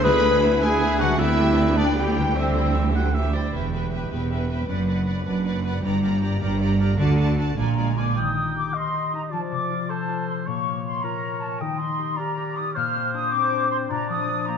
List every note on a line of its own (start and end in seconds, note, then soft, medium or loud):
0.00 1.16 D2 medium
0.00 1.00 D3 medium
0.00 1.17 E4 medium
0.00 1.19 G#4 medium
0.00 0.40 G#4 loud
0.00 0.22 G#4 medium
0.00 2.31 B4 medium
0.00 0.61 B4 loud
0.00 0.40 B4 loud
0.00 0.22 E5 medium
0.04 0.58 D3 medium
0.04 0.22 B3 medium
0.04 0.22 E4 medium
0.04 2.04 B4 medium
0.04 1.18 E5 medium
0.04 0.61 B5 loud
0.23 0.42 G#3 medium
0.23 0.43 G#4 medium
0.23 0.42 B4 medium
0.23 0.42 G#5 medium
0.42 0.62 B3 medium
0.42 0.62 E4 medium
0.42 0.61 G#4 medium
0.42 0.62 E5 medium
0.61 0.81 G#3 medium
0.61 0.98 E4 medium
0.61 0.99 G#4 loud
0.61 1.02 G#4 medium
0.61 0.81 G#4 medium
0.61 0.81 B4 medium
0.61 0.81 G#5 medium
0.61 0.99 G#5 medium
0.79 0.99 B3 medium
0.79 0.99 E4 medium
0.79 0.98 G#4 medium
0.79 0.98 E5 medium
0.99 2.17 D3 medium
0.99 1.19 G#3 medium
0.99 1.17 D4 medium
0.99 1.19 F#4 loud
0.99 1.20 F#4 medium
0.99 1.19 G#4 medium
0.99 1.19 B4 medium
0.99 1.19 F#5 medium
0.99 1.19 G#5 medium
1.06 2.31 G3 medium
1.10 2.33 D4 medium
1.15 3.30 D2 medium
1.15 1.76 C4 medium
1.15 1.76 E4 loud
1.15 2.31 G4 medium
1.15 1.37 D5 medium
1.19 3.30 D2 medium
1.19 1.37 B3 medium
1.19 1.79 E4 medium
1.19 1.37 G4 medium
1.19 1.77 E5 medium
1.19 3.34 G5 medium
1.37 1.58 G3 medium
1.37 1.58 D4 medium
1.37 1.58 B4 medium
1.37 1.58 G5 medium
1.56 1.77 B3 soft
1.56 1.78 G4 medium
1.56 1.77 D5 medium
1.76 1.97 G3 soft
1.76 1.86 B3 medium
1.76 1.96 D4 medium
1.76 1.97 D4 medium
1.76 1.96 B4 medium
1.76 1.97 D5 medium
1.76 1.97 G5 medium
1.95 2.15 B3 soft
1.95 2.37 E4 medium
1.95 2.35 G4 medium
1.95 2.15 G4 soft
1.95 2.38 G4 medium
1.95 2.15 D5 medium
1.95 2.36 G5 medium
2.17 3.46 D3 medium
2.17 2.36 G3 soft
2.17 2.36 D4 soft
2.17 2.36 B4 soft
2.17 2.36 G5 soft
2.23 3.48 C4 soft
2.27 4.66 E4 soft
2.32 2.94 G3 medium
2.32 2.94 C4 medium
2.32 3.91 G4 soft
2.36 2.55 E3 soft
2.36 2.95 C4 medium
2.36 2.55 G4 soft
2.36 2.95 C5 medium
2.36 2.87 E5 soft
2.36 2.55 E5 soft
2.55 2.76 G3 soft
2.55 2.76 E4 soft
2.55 2.75 C5 soft
2.55 2.75 G5 soft
2.75 2.95 E3 soft
2.75 2.95 G4 soft
2.75 2.95 E5 soft
2.95 3.15 G3 soft
2.95 3.15 E4 soft
2.95 3.15 C5 soft
2.95 3.16 F#5 medium
2.95 3.15 G5 soft
3.14 3.33 E3 soft
3.14 3.33 G4 soft
3.14 3.33 E5 soft
3.14 3.32 E5 medium
3.33 3.54 G3 soft
3.33 3.54 E4 soft
3.33 3.53 C5 soft
3.33 3.53 D5 soft
3.33 3.54 G5 soft
3.53 4.05 E1 soft
3.53 4.04 E2 soft
3.53 4.71 E2 soft
3.53 5.79 B3 soft
3.53 4.65 G4 soft
3.53 3.72 B4 soft
3.53 3.71 E5 soft
3.53 3.73 G5 soft
3.72 4.87 B3 soft
3.72 3.91 B4 soft
3.72 3.90 E5 soft
3.72 3.91 G5 soft
3.91 4.71 G4 soft
3.91 4.11 B4 soft
3.91 4.10 E5 soft
3.91 4.11 G5 soft
4.11 4.63 E1 soft
4.11 4.62 E2 soft
4.11 4.49 B4 soft
4.11 4.30 B4 soft
4.11 4.30 E5 soft
4.11 4.30 G5 soft
4.30 4.49 B4 soft
4.30 4.70 E5 soft
4.30 4.49 E5 soft
4.30 4.49 G5 soft
4.50 5.06 B4 soft
4.50 4.68 B4 soft
4.50 4.69 E5 soft
4.50 4.68 G5 soft
4.68 5.20 F#1 soft
4.68 5.19 F#2 medium
4.68 5.85 F#2 soft
4.68 6.99 D4 soft
4.68 4.87 B4 soft
4.68 4.87 D5 soft
4.68 4.86 F#5 soft
4.87 5.85 B3 soft
4.87 5.06 B4 soft
4.87 5.05 D5 soft
4.87 5.06 F#5 soft
5.06 5.26 B4 soft
5.06 5.64 B4 soft
5.06 5.25 D5 soft
5.06 5.25 F#5 soft
5.26 5.77 F#1 soft
5.26 5.76 F#2 soft
5.26 7.18 D4 soft
5.26 5.44 B4 soft
5.26 5.44 D5 soft
5.26 5.44 F#5 soft
5.45 5.63 B4 soft
5.45 5.64 D5 soft
5.45 6.59 D5 soft
5.45 5.64 F#5 soft
5.64 5.83 B4 soft
5.64 5.85 B4 soft
5.64 5.83 D5 soft
5.64 5.83 F#5 soft
5.83 6.34 G1 medium
5.83 6.34 G2 medium
5.83 7.01 G2 soft
5.83 6.96 A#3 soft
5.83 6.01 G4 soft
5.83 6.01 D5 soft
5.83 6.02 A#5 soft
6.02 7.01 A#3 soft
6.02 6.19 G4 soft
6.02 6.21 D5 soft
6.02 6.21 A#5 soft
6.21 6.39 G4 soft
6.21 7.00 G4 soft
6.21 6.40 D5 soft
6.21 6.41 A#5 soft
6.40 6.92 G1 medium
6.40 6.92 G2 medium
6.40 6.59 G4 soft
6.40 6.79 A#4 soft
6.40 6.59 D5 soft
6.40 6.61 A#5 soft
6.60 6.78 G4 soft
6.60 6.78 D5 soft
6.60 8.18 D5 soft
6.60 6.80 A#5 soft
6.79 6.98 G4 soft
6.79 7.01 A#4 soft
6.79 6.98 D5 soft
6.79 6.99 A#5 soft
6.98 7.51 D2 medium
6.98 7.50 D3 medium
6.98 7.59 D3 medium
6.98 7.58 A3 medium
6.98 7.17 F#4 medium
6.98 7.58 F#4 soft
6.98 7.17 D5 soft
6.98 7.17 A5 medium
7.18 7.37 D4 soft
7.18 7.37 F#4 soft
7.18 7.37 D5 soft
7.18 7.37 A5 soft
7.38 7.97 D4 soft
7.38 7.57 F#4 soft
7.38 7.60 F#4 soft
7.38 7.56 D5 soft
7.38 7.57 A5 soft
7.57 8.10 A#1 medium
7.57 8.10 A#2 medium
7.57 8.18 A#2 soft
7.57 7.97 G#3 soft
7.57 7.96 D4 soft
7.57 7.76 F4 soft
7.57 7.76 D5 soft
7.57 7.76 G#5 soft
7.57 7.94 A#5 medium
7.77 8.18 G#3 soft
7.77 7.97 F4 soft
7.77 7.95 D5 soft
7.77 7.95 G#5 soft
7.96 8.18 D4 soft
7.96 8.18 F4 soft
7.96 8.17 F4 soft
7.96 8.16 D5 soft
7.96 8.16 G#5 soft
7.96 8.16 D6 medium
8.16 9.34 D#3 soft
8.16 8.76 D#4 soft
8.16 8.75 G5 soft
8.16 8.55 D#6 medium
8.37 9.12 D#4 soft
8.56 8.93 G4 soft
8.56 8.75 D6 medium
8.74 9.34 A#4 soft
8.74 9.33 D#5 soft
8.74 9.32 D#5 soft
8.74 9.13 C6 medium
8.94 9.34 G4 soft
9.13 9.34 D#4 soft
9.13 9.21 A#5 medium
9.31 11.63 F3 soft
9.31 9.89 F4 soft
9.31 9.92 D5 soft
9.31 9.40 A5 medium
9.51 11.63 C3 soft
9.51 9.89 D6 medium
9.70 10.08 F4 soft
9.89 10.46 A4 soft
9.89 10.48 A4 soft
9.89 10.48 C5 soft
9.89 10.28 A5 medium
10.09 11.02 F4 soft
10.29 10.35 C6 medium
10.46 11.63 A#2 soft
10.46 11.03 A#3 soft
10.46 11.60 C#5 soft
10.46 10.84 C#6 medium
10.66 11.41 A#3 soft
10.85 11.04 C6 medium
11.03 11.63 F4 soft
11.03 11.64 A#4 soft
11.03 11.42 A#5 medium
11.41 14.58 A#3 soft
11.41 11.61 A5 medium
11.59 12.77 D#3 soft
11.59 12.19 D#4 soft
11.59 12.19 D#5 soft
11.59 11.79 G5 medium
11.77 12.56 D#4 soft
11.77 12.17 C6 medium
11.99 12.36 G4 soft
12.16 12.75 G4 soft
12.16 14.58 A#4 soft
12.16 12.77 D5 soft
12.16 12.55 A#5 medium
12.37 12.77 G4 soft
12.56 12.78 D#4 soft
12.56 12.75 D#6 medium
12.74 13.89 A#2 medium
12.74 13.35 A#3 medium
12.74 13.90 C5 soft
12.74 13.12 F6 medium
12.95 13.70 C4 soft
13.13 13.51 D4 soft
13.13 13.32 D#6 medium
13.31 13.91 C4 medium
13.31 14.47 C5 soft
13.31 13.70 D6 medium
13.52 14.28 D4 soft
13.70 14.58 C4 soft
13.70 13.76 C6 medium
13.89 14.58 A#2 medium
13.89 14.47 D4 medium
13.89 14.58 D5 soft
13.89 14.08 A#5 medium
14.09 14.58 F3 soft
14.09 14.47 D#6 medium
14.29 14.58 D4 soft
14.48 14.58 A#3 medium
14.48 14.58 C5 soft
14.48 14.58 A#5 medium